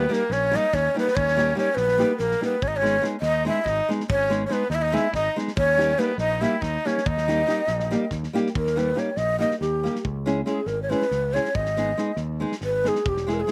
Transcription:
Already playing: B3 B4
0.09 G3 A#3 D#4 G4 A#4, snare
0.30 A#1 C#4 C#5, snare
0.51 G3 A#3 D#4 G4, snare
0.56 D#4 D#5
0.73 D#2 C#4 C#5, kick, snare
0.94 G3 A#3 B3 D#4 G4, snare
0.99 B4
1.08 snare
1.15 D#2 C#4 C#5, kick
1.28 snare
1.37 G3 A#3 D#4 G4, snare
1.55 G3 A#3 C#4 D#4 G4 C#5, snare
1.75 A#1 B3 B4, snare
1.88 snare
1.98 G3 A#3 D#4 G4, snare
2.18 A#1 A#3 A#4, snare
2.31 snare
2.41 G3 A#3 D#4 G4 B4, snare
2.45 B3
2.62 G#1 C#4 C#5, kick
2.68 D#4 D#5
2.76 C#4 C#5
2.82 G#3 B3 D#4 G#4, snare
3.01 G#3 B3 D#4 G#4, snare
3.21 D#2 D#4 D#5, snare
3.45 G#3 B3 D#4 E4 G#4 E5
3.64 G#1 D#5, kick, snare
3.69 D#4
3.89 G#3 B3 D#4 G#4, snare
4.00 snare
4.09 G#1 C#4 C#5, kick
4.30 G#3 B3 D#4 G#4, snare
4.45 C#4 C#5
4.49 G#3 B3 D#4 G#4 B4, snare
4.70 D#2 D#4 D#5, snare
4.74 E4 E5
4.82 D#4 D#5
4.92 G#3 B3 D#4 E4 G#4 E5, snare
5.13 G#1 D#4 D#5, kick, snare
5.36 G#3 B3 D#4 G#4, snare
5.48 snare
5.57 D#2 C#4 C#5, kick
5.77 G3 A#3 D#4 G4, snare
5.98 G3 A#3 B3 D#4 G4 B4, snare
6.18 A#1 D#4 D#5, snare
6.41 G3 A#3 D#4 E4 G4 E5, snare
6.61 D#2 D#4 D#5, kick, snare
6.85 G3 A#3 C#4 D#4 G4 C#5, snare
6.98 snare
7.06 D#2 D#4 D#5, kick
7.18 snare
7.28 G3 A#3 D#4 G4, snare
7.47 G3 A#3 D#4 G4, snare
7.67 A#1, snare
7.80 snare
7.91 G3 A#3 D#4 G4, snare
8.11 D#2, kick, snare
8.23 snare
8.33 G3 A#3 D#4 G4, snare
8.46 snare
8.55 D#2 A#4, kick
8.67 snare
8.76 G3 A#3 D#4 G4 B4, snare
8.95 G3 A#3 D#4 G4 C#5, snare
9.17 A#1 D#5, snare
9.38 G3 A#3 D#4 G4 D#5, snare
9.51 snare
9.61 D#2 G4, snare
9.83 G3 A#3 D#4 G4, snare
9.95 snare
10.05 C#2, kick
10.26 G#3 C#4 E4 G#4, snare
10.46 G#3 C#4 E4 G#4, snare
10.66 G#1 A#4, snare
10.82 C#5
10.90 G#3 C#4 E4 G#4 B4, snare
11.02 snare
11.11 C#2, snare
11.33 G#3 C#4 E4 G#4 C#5, snare
11.45 snare
11.55 G#1 D#5, kick
11.66 snare
11.77 G#3 B3 D#4 G#4, snare
11.97 G#3 B3 D#4 G#4, snare
12.16 D#2, snare
12.40 G#3 B3 D#4 G#4
12.52 snare
12.61 G#1 B4, snare
12.84 G#3 B3 D#4 G#4, snare
12.88 G#4
12.95 snare
13.06 E1 G4, kick
13.17 snare
13.27 G#3 B3 E4 G#4, snare
13.34 A#4
13.40 G#4
13.47 G#3 B3 E4, snare

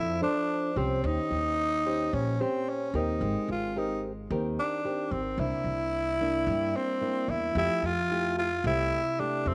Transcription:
Already playing: F2 F3 D4 E4 A4 C5
0.21 D4 A4 C5
0.76 C2 C4 C#4 G4 C5
1.04 D#2 D#3 D#4
1.31 D#2
1.86 C#4 G4 C5
2.13 A#1 A#2 C#4
2.40 C4 C#4 G4 C5
2.69 C#4
2.94 D#2 C4 D#4 G4 A#4
3.21 G#1 G#3
3.48 G#1 F4
3.76 C4 D#4 G4 A#4
4.30 D#2 D#3 C4 G4 A#4
4.59 D4
4.85 C4 G4 A#4
5.11 G#1 C4
5.38 C2 C3 A#3 D4 E4
5.64 C2
6.21 A#3 D4 E4
6.47 G2 G3
6.76 C4
7.01 A#3 D4 E4
7.28 E2 E4
7.55 F2 F3 A3 E4 G4
7.82 F2 F4
8.11 A3 E4 G4
8.38 F4
8.64 C2 C3 A3 E4 G4
9.19 A3 D4 E4 G4
9.46 F2 C4

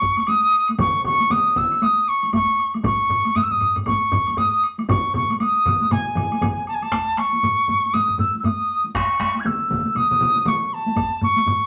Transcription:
Already playing: C#6
0.01 taiko, high woodblock
0.17 taiko high, high woodblock
0.27 D#6, taiko high, high woodblock
0.53 high woodblock
0.68 taiko high, high woodblock
0.79 C#6, taiko, taiko mid, taiko high, high woodblock
1.04 C#6, taiko mid, high woodblock
1.20 taiko high, high woodblock
1.30 D#6, taiko mid, taiko high, high woodblock
1.56 E6, taiko, taiko mid, high woodblock
1.72 taiko high, high woodblock
1.82 D#6, taiko high, high woodblock
2.08 C#6, high woodblock
2.23 taiko high, high woodblock
2.33 C#6, taiko, taiko high, high woodblock
2.59 high woodblock
2.74 taiko high, high woodblock
2.83 C#6, taiko, taiko low-mid, taiko high, high woodblock
3.09 taiko low-mid, high woodblock
3.25 taiko high, high woodblock
3.35 D#6, taiko low-mid, taiko high, high woodblock
3.43 E6
3.51 D#6, taiko low-mid
3.61 taiko low-mid, high woodblock
3.76 taiko low-mid, taiko high, high woodblock
3.86 C#6, taiko, taiko low-mid, taiko high, high woodblock
4.11 taiko, taiko low-mid, high woodblock
4.27 taiko high, high woodblock
4.37 D#6, taiko low-mid, taiko high, high woodblock
4.64 high woodblock
4.78 taiko high, high woodblock
4.88 C#6, taiko, taiko low-mid, taiko mid, taiko high, high woodblock
5.14 C#6, taiko low-mid, taiko mid, high woodblock
5.30 taiko high, high woodblock
5.40 D#6, taiko high, high woodblock
5.66 taiko, taiko low-mid, taiko mid, high woodblock
5.81 taiko high
5.91 G#5, taiko low-mid, taiko mid, taiko high, high woodblock
6.16 taiko low-mid, taiko mid, high woodblock
6.32 taiko high, high woodblock
6.41 taiko, taiko low-mid, taiko mid, taiko high, high woodblock
6.67 A5, high woodblock
6.74 G#5
6.82 A5, taiko high, high woodblock
6.92 taiko rim, taiko, taiko high, high woodblock
7.17 C#6, taiko rim, taiko high
7.33 taiko high
7.43 taiko low-mid, taiko high, high woodblock
7.68 taiko low-mid, taiko high
7.84 taiko high
7.93 D#6, taiko low-mid, taiko high, high woodblock
8.08 taiko low-mid
8.18 E6, taiko low-mid, taiko high
8.35 taiko high
8.39 E6
8.43 D#6, taiko low-mid, taiko high, high woodblock
8.84 taiko high
8.95 C#6, taiko rim, taiko, taiko high, high woodblock
9.20 taiko rim, taiko, taiko high
9.35 taiko high
9.40 G#6
9.45 E6, taiko mid, taiko high, high woodblock
9.70 taiko, taiko mid, taiko high
9.84 taiko high
9.95 D#6, taiko mid, taiko high, high woodblock
10.11 taiko mid
10.21 taiko mid
10.36 taiko high
10.46 C#6, taiko mid, taiko high, high woodblock
10.67 C#6
10.73 A5
10.86 taiko high
10.96 taiko, taiko high, high woodblock
11.21 C#6, taiko low-mid, taiko high
11.36 taiko high
11.46 taiko low-mid, taiko high, high woodblock

